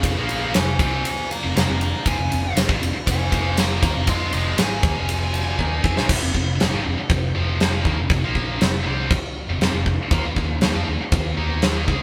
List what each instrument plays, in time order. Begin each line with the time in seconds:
0.03 fingered electric bass F1, distorted electric guitar F2 C3, lead electric guitar G#4 F5, kick, ride
0.17 fingered electric bass A#1, distorted electric guitar A#2 F3 A#3
0.29 lead electric guitar G#4 F5, ride
0.54 fingered electric bass F1, distorted electric guitar F2 C3, lead electric guitar C5 G#5, snare, ride
0.79 fingered electric bass C2, distorted electric guitar C3 G3 C4, lead electric guitar C5 G#5, kick, ride
1.05 lead electric guitar C5 G#5, ride
1.31 lead electric guitar F5 A#5, ride
1.43 fingered electric bass F1, distorted electric guitar F2 C3
1.56 fingered electric bass F1, distorted electric guitar F2 C3, lead electric guitar F5 A#5, snare, ride
1.69 fingered electric bass F1, distorted electric guitar F2 C3
1.81 lead electric guitar F5 A#5, ride
2.06 fingered electric bass F1, distorted electric guitar F2 C3, lead electric guitar G#5, kick, ride
2.18 fingered electric bass F1, distorted electric guitar F2 C3
2.30 fingered electric bass F1, distorted electric guitar F2 C3, ride
2.56 fingered electric bass F1, distorted electric guitar F2 C3, snare, ride
2.68 fingered electric bass G#1, distorted electric guitar G#2 D#3, kick
2.81 fingered electric bass F1, distorted electric guitar F2 C3, ride
2.93 muted distorted electric guitar stroke
3.07 fingered electric bass F1, distorted electric guitar F2 C3, lead electric guitar C5 G#5, kick, ride
3.30 fingered electric bass F1, distorted electric guitar F2 C3 F3, lead electric guitar C5, kick, ride
3.35 lead electric guitar G#5
3.57 lead electric guitar F5 A#5, snare, ride
3.82 fingered electric bass D#2, distorted electric guitar D#3 A#3, lead electric guitar F5 A#5, kick, ride
3.93 fingered electric bass F1, distorted electric guitar F2 C3
4.07 fingered electric bass F2, distorted electric guitar F3 C4 F4, lead electric guitar D#5 C6, kick, ride
4.32 fingered electric bass F1, distorted electric guitar F2 C3 F3, lead electric guitar D#5 C6, ride
4.57 fingered electric bass G#1, distorted electric guitar G#2 D#3 G#3, lead electric guitar G#5, snare, ride
4.83 fingered electric bass D#2, distorted electric guitar D#3 A#3, kick, ride
4.95 fingered electric bass F1, distorted electric guitar F2 C3 F3
5.09 ride
5.34 ride
5.58 fingered electric bass D#2, distorted electric guitar D#3 A#3 D#4, kick
5.83 fingered electric bass F2, distorted electric guitar F3 C4, kick
5.96 fingered electric bass A#1, distorted electric guitar A#2 F3, snare
6.07 fingered electric bass F1, distorted electric guitar F2 C3, kick, crash
6.21 fingered electric bass F1, distorted electric guitar F2 C3
6.34 fingered electric bass F1, distorted electric guitar F2 C3, kick
6.60 fingered electric bass F1, distorted electric guitar F2 C3, snare, crash
6.72 fingered electric bass G#1, distorted electric guitar G#2 D#3
6.85 fingered electric bass F1, distorted electric guitar F2 C3
6.97 muted distorted electric guitar stroke
7.10 fingered electric bass F1, distorted electric guitar F2 C3, kick, crash
7.35 fingered electric bass F1, distorted electric guitar F2 C3 F3
7.60 snare, crash
7.85 fingered electric bass D#2, distorted electric guitar D#3 A#3, kick
7.98 fingered electric bass F1, distorted electric guitar F2 C3
8.10 fingered electric bass F1, distorted electric guitar F2 C3, kick, crash
8.24 fingered electric bass A#1, distorted electric guitar A#2 F3 A#3
8.35 kick
8.60 fingered electric bass F1, distorted electric guitar F2 C3, snare, crash
8.86 fingered electric bass C2, distorted electric guitar C3 G3 C4
9.11 kick, crash
9.48 fingered electric bass F1, distorted electric guitar F2 C3
9.60 fingered electric bass F1, distorted electric guitar F2 C3, snare, crash
9.73 fingered electric bass F1, distorted electric guitar F2 C3
9.86 kick
10.11 fingered electric bass D#2, distorted electric guitar D#3 A#3, kick, crash
10.25 fingered electric bass D#2, distorted electric guitar D#3 A#3
10.36 fingered electric bass D#2, distorted electric guitar D#3 A#3, kick
10.61 fingered electric bass D#2, distorted electric guitar D#3 A#3, snare, crash
10.74 fingered electric bass F2, distorted electric guitar F3 C4
10.88 fingered electric bass D#2, distorted electric guitar D#3 A#3
11.01 muted fingered electric bass stroke, muted distorted electric guitar stroke
11.12 fingered electric bass D#2, distorted electric guitar D#3 A#3, kick, crash
11.37 fingered electric bass D#2, distorted electric guitar D#3 A#3 D#4
11.62 snare, crash
11.87 fingered electric bass C#2, distorted electric guitar C#3 G#3, kick